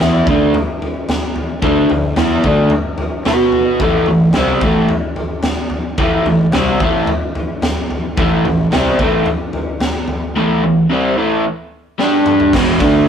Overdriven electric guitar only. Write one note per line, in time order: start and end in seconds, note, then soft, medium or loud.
0.00 0.26 E3 medium
0.00 0.27 B3 loud
0.00 0.27 E4 loud
0.27 0.53 D3 medium
0.27 0.54 A3 medium
0.27 0.55 D4 medium
1.62 1.89 D3 medium
1.62 1.89 A3 medium
1.62 1.90 D4 medium
1.91 2.12 D3 medium
1.91 2.12 A3 medium
2.17 2.43 E3 medium
2.17 2.44 B3 medium
2.17 2.44 E4 loud
2.44 2.71 D3 medium
2.44 2.71 A3 medium
2.44 2.72 D4 medium
3.26 3.80 B3 medium
3.26 3.80 F#4 medium
3.26 3.80 B4 medium
3.81 4.07 A2 medium
3.81 4.07 E3 medium
3.81 4.08 A3 medium
4.08 4.30 A2 medium
4.08 4.30 E3 medium
4.35 4.61 C3 medium
4.35 4.62 G3 loud
4.35 4.63 C4 loud
4.62 4.89 A2 medium
4.62 4.89 E3 medium
4.62 4.90 A3 medium
5.98 6.25 A2 medium
5.98 6.25 E3 medium
5.98 6.26 A3 medium
6.27 6.48 A2 medium
6.27 6.48 E3 medium
6.54 6.80 C3 medium
6.54 6.80 G3 medium
6.54 6.81 C4 loud
6.81 7.07 A2 medium
6.81 7.08 E3 loud
6.81 7.09 A3 medium
8.17 8.44 A2 medium
8.17 8.44 E3 medium
8.17 8.45 A3 loud
8.46 8.67 A2 medium
8.46 8.67 E3 medium
8.72 8.99 C3 medium
8.72 8.99 G3 loud
8.72 9.00 C4 loud
9.00 9.26 A2 medium
9.00 9.26 E3 medium
9.00 9.27 A3 medium
10.36 10.62 A2 medium
10.36 10.63 E3 medium
10.36 10.63 A3 medium
10.64 10.85 A2 medium
10.64 10.85 E3 medium
10.90 11.16 C3 medium
10.90 11.17 G3 loud
10.90 11.17 C4 loud
11.17 11.43 A2 medium
11.17 11.44 E3 medium
11.17 11.44 A3 medium
11.98 12.52 G3 medium
11.98 12.53 D4 medium
11.98 12.53 G4 medium
12.53 12.80 E2 medium
12.53 12.79 B2 medium
12.53 12.80 E3 loud
12.80 13.07 D3 loud
12.80 13.07 A3 loud
12.80 13.08 D4 loud